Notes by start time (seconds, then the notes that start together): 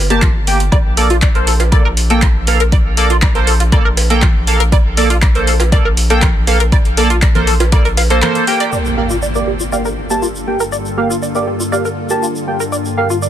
Already playing: G1
0.10 A#3 G4 A5, closed hi-hat
0.22 F4, kick, clap, closed hi-hat, high conga
0.47 A#3 G4 G5, open hi-hat
0.60 closed hi-hat
0.72 A#1 D5, kick, closed hi-hat, high woodblock
0.97 A#3 A4 D5, open hi-hat
1.10 F4, closed hi-hat
1.22 D5, kick, clap, closed hi-hat, high woodblock
1.35 A#3 A4 A#4 C5, closed hi-hat
1.47 A4, open hi-hat
1.60 F4, closed hi-hat, cowbell
1.72 A#3 A4 D5, kick, closed hi-hat, high woodblock
1.85 A#4
1.97 open hi-hat
2.10 A#3 A4 G5, closed hi-hat
2.22 F4, kick, clap, closed hi-hat, high conga, high woodblock
2.47 A#3 A4 F5, open hi-hat, cowbell
2.60 A#4, closed hi-hat
2.72 D5, kick, closed hi-hat, high woodblock
2.97 A#3 A4 D5, open hi-hat
3.10 F4, closed hi-hat
3.22 D5, kick, clap, closed hi-hat, high woodblock
3.35 A#3 A4 A#4 C5, closed hi-hat
3.47 A4, open hi-hat
3.60 F4, closed hi-hat
3.72 A#3 A4 D5, kick, closed hi-hat, high woodblock
3.85 A#4
3.97 open hi-hat, cowbell
4.10 A#3 A4 G5, closed hi-hat
4.22 F4, kick, clap, closed hi-hat, high conga, high woodblock
4.47 A#3 A4 F5, open hi-hat
4.60 A#4, closed hi-hat
4.72 D5, kick, closed hi-hat, high woodblock
4.97 A#3 A4 D5, open hi-hat
5.10 F4, closed hi-hat
5.22 D5, kick, clap, closed hi-hat, high woodblock
5.35 A#3 A4 A#4 C5, closed hi-hat
5.47 A4, open hi-hat
5.60 F4, closed hi-hat, cowbell
5.72 A#3 A4 D5, kick, closed hi-hat, high woodblock
5.85 A#4
5.97 open hi-hat
6.10 A#3 A4 G5, closed hi-hat
6.22 F4, kick, clap, closed hi-hat, high conga, high woodblock
6.47 A#3 A4 F5, open hi-hat, cowbell
6.60 A#4, closed hi-hat
6.72 D5, kick, closed hi-hat, high woodblock
6.85 closed hi-hat
6.97 A#3 A4 D5, open hi-hat
7.10 F4, closed hi-hat
7.22 D5, kick, clap, closed hi-hat, high woodblock
7.35 A#3 A4 A#4 C5, closed hi-hat, high conga
7.47 A4, open hi-hat
7.60 F4, closed hi-hat, cowbell
7.72 A#3 A4 D5, kick, closed hi-hat, high woodblock
7.85 A#4, closed hi-hat
7.97 F5, open hi-hat, cowbell
8.10 A#3 A4 C5, closed hi-hat
8.22 A#3 A4 A#4 C5, clap, closed hi-hat, high conga, high woodblock
8.35 closed hi-hat
8.47 A#3 G4 G5, open hi-hat
8.60 D5, closed hi-hat
8.72 G2 D3 A#3 F4 A4 D5, impact, shaker
8.85 shaker
8.97 A#3 G4 F5
9.10 F4, shaker
9.22 D5, shaker
9.35 A#3 G4 A#4 D5, shaker
9.47 G4
9.60 F4, shaker
9.72 A#3 G4 D5 F5, shaker
9.85 A#4, shaker
10.10 A#3 G4 A5, shaker
10.22 F4, shaker
10.35 shaker
10.47 A#3 G4 G5
10.60 A#4, shaker
10.72 D5, shaker
10.85 shaker
10.97 A#3 G4 F5
11.10 F4, shaker
11.22 D5, shaker
11.35 A#3 G4 A#4 D5, shaker
11.47 G4
11.60 F4, shaker
11.72 A#3 G4 D5 F5, shaker
11.85 A#4, shaker
12.10 A#3 G4 A5, shaker
12.22 F4, shaker
12.36 shaker
12.47 A#3 G4 G5
12.60 A#4, shaker
12.72 A#4 D5, shaker
12.85 shaker
12.97 A#3 G4 F5
13.10 F4, shaker
13.22 D5, shaker